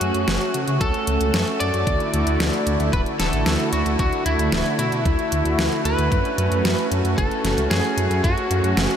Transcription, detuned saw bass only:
0.01 0.12 F#2 medium
0.14 0.25 F#2 medium
0.28 0.38 F#1 loud
0.54 0.65 C#3 loud
0.68 0.78 C#3 medium
0.81 0.91 C#2 loud
1.08 1.18 C#2 medium
1.21 1.31 C#2 medium
1.34 1.45 F#2 loud
1.61 1.71 F#2 medium
1.74 1.85 F#2 medium
1.87 1.98 D2 loud
2.14 2.24 D2 medium
2.27 2.38 D2 medium
2.40 2.51 D2 loud
2.67 2.77 D2 medium
2.80 2.91 D2 medium
2.93 3.04 D1 loud
3.20 3.30 D1 medium
3.33 3.44 A1 medium
3.46 3.57 D2 loud
3.73 3.83 D2 medium
3.86 3.97 D2 medium
3.99 4.10 D2 loud
4.26 4.37 D2 medium
4.39 4.50 D2 medium
4.52 4.63 D1 loud
4.79 4.90 B2 medium
4.92 5.03 B2 medium
5.05 5.16 D2 loud
5.32 5.43 D2 medium
5.45 5.56 D2 medium
5.58 5.69 D2 loud
5.85 5.96 D2 medium
5.99 6.09 D2 medium
6.12 6.22 F#2 loud
6.38 6.49 F#2 medium
6.51 6.62 F#2 medium
6.65 6.75 F#2 loud
6.91 7.02 F#2 medium
7.04 7.15 F#2 medium
7.18 7.29 F#1 loud
7.44 7.55 F#1 medium
7.57 7.68 C#2 medium
7.71 7.82 F#2 loud
7.97 8.08 F#2 medium
8.10 8.21 F#2 medium
8.24 8.35 F#2 loud
8.50 8.61 F#2 medium
8.64 8.75 F#2 medium
8.77 8.88 F#1 loud

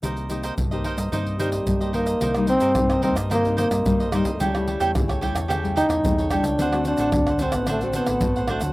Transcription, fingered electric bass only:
0.03 0.50 C2 medium
0.57 0.81 C2 medium
0.97 1.10 G2 medium
1.12 1.59 G2 medium
1.67 2.14 G2 medium
2.22 2.57 C2 medium
2.62 2.74 G2 medium
2.77 3.17 C2 medium
3.17 3.64 G2 medium
3.71 3.83 G2 medium
3.85 4.21 G2 medium
4.25 4.38 C2 medium
4.41 4.76 C#2 loud
4.80 4.92 E2 medium
4.95 5.35 C#2 medium
5.35 5.82 E2 medium
5.89 6.01 E2 medium
6.03 6.39 E2 medium
6.43 6.56 C#2 medium
6.58 6.93 D2 loud
6.98 7.11 A1 medium
7.13 7.55 D2 medium
7.53 8.00 A1 medium
8.07 8.20 A1 medium
8.22 8.57 A1 medium
8.62 8.73 D2 loud

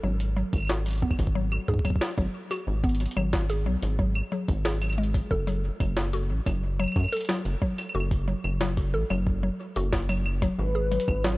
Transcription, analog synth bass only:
0.03 0.43 G#1 loud
0.53 1.04 G#1 medium
1.02 1.13 B1 loud
1.19 1.58 G#1 loud
1.68 1.79 G#2 medium
2.18 2.28 G#1 medium
2.67 3.07 G#1 loud
3.17 3.68 G#1 medium
3.66 3.76 B1 loud
3.82 4.22 G#1 loud
4.49 5.21 G#1 loud
5.31 5.70 F#1 loud
5.80 6.31 F#1 medium
6.30 6.40 A1 loud
6.46 6.86 F#1 loud
6.96 7.06 F#2 medium
7.45 7.55 F#1 medium
7.95 8.34 F#1 loud
8.44 8.95 F#1 medium
8.94 9.04 A1 loud
9.10 9.50 F#1 loud
9.76 10.49 F#1 loud
10.58 10.98 G#1 loud
11.08 11.38 G#1 medium

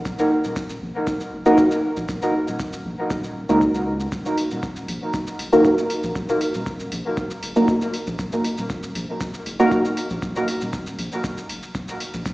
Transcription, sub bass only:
0.05 0.15 D#1 loud
0.44 0.53 D#1 loud
0.70 0.78 D#1 medium
0.82 0.92 A#1 loud
1.32 1.42 F#1 medium
1.97 2.06 A#1 loud
2.09 2.19 D#1 loud
2.47 2.56 D#1 loud
2.73 2.82 D#1 medium
2.85 2.95 A#1 loud
3.10 3.44 D#1 medium
3.49 4.07 C#2 loud
4.12 4.22 D#1 medium
4.51 4.60 D#1 loud
4.76 4.85 D#1 medium
4.88 4.98 A#1 loud
5.39 5.49 F#1 medium
6.03 6.12 A#1 medium
6.16 6.25 D#1 medium
6.54 6.63 D#1 loud
6.80 6.89 D#1 medium
6.92 7.02 A#1 loud
7.43 7.53 F#1 medium
8.07 8.16 A#1 medium
8.19 8.29 D#1 medium
8.58 8.67 D#1 loud
8.83 8.92 D#1 medium
8.95 9.05 A#1 loud
9.46 9.56 F#1 medium
10.10 10.19 A#1 medium
10.22 10.32 D#1 loud
10.61 10.70 D#1 loud
10.87 10.95 D#1 medium
10.99 11.08 A#1 loud
11.49 11.59 F#1 medium
12.14 12.23 A#1 medium
12.26 12.34 D#1 loud

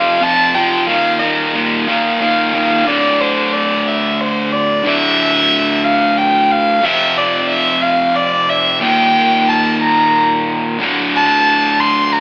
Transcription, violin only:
0.00 0.24 F5 medium
0.23 0.56 A5 loud
0.54 0.86 G5 loud
0.87 1.21 F5 loud
1.19 1.53 D#5 medium
1.87 2.17 F5 medium
2.20 2.51 F5 medium
2.52 2.88 F5 medium
2.87 3.22 D5 loud
3.21 3.54 C5 medium
3.53 3.89 D5 medium
3.87 4.22 E5 medium
4.20 4.54 C5 medium
4.52 4.87 D5 medium
4.86 5.86 E5 loud
5.84 6.18 F5 loud
6.17 6.53 G5 medium
6.51 6.86 F5 loud
6.84 7.18 E5 loud
7.17 7.49 D5 loud
7.50 7.83 E5 loud
7.82 8.17 F5 loud
8.16 8.51 D5 loud
8.49 8.82 E5 loud
8.82 9.50 G5 loud
9.48 9.81 A5 loud
9.82 10.52 A#5 loud
11.15 11.81 A5 loud
11.80 12.14 C6 loud
12.12 12.20 A#5 loud

